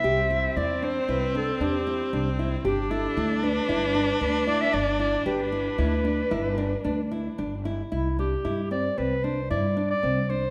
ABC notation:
X:1
M:5/4
L:1/16
Q:1/4=114
K:C
V:1 name="Clarinet"
e4 d2 c2 B2 A2 G6 z2 | G2 A4 B6 B2 d e d2 d2 | B16 z4 | E2 G4 d2 B2 c2 d3 d3 c2 |]
V:2 name="Nylon-string guitar"
G2 E2 E2 D2 E2 D2 D2 E2 D2 E2 | G2 E2 E2 D2 E2 D2 D2 E2 D2 E2 | G2 E2 E2 D2 E2 D2 D2 E2 D2 E2 | E2 D2 E2 C2 C2 D2 E2 D2 C2 D2 |]
V:3 name="Viola"
C16- C4 | D16- D4- | D16- D2 z2 | z16 z4 |]
V:4 name="Upright bass" clef=bass
C,,4 E,,4 C,,4 E,,4 C,,4 | G,,,4 D,,4 G,,,4 D,,4 G,,,4 | G,,,4 D,,4 G,,,4 D,,4 G,,,4 | C,,4 G,,4 C,,4 G,,4 C,,4 |]